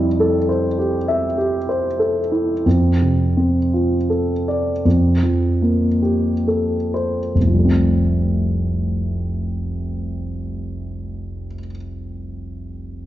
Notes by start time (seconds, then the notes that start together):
Already playing: F2 C3 G3 E4
0.20 A4
0.49 C5
0.79 G4
1.08 E5
1.38 G4
1.69 C5
1.99 A4
2.32 E4
2.66 F2
3.02 C3
3.37 C4
3.74 F4
4.10 A4
4.48 D5
4.85 F2
5.23 F3
5.62 A#3
6.02 G4
6.48 A4
6.94 C5
7.35 F1
7.41 C2
7.47 F3
7.53 G3
7.58 A3
7.65 C4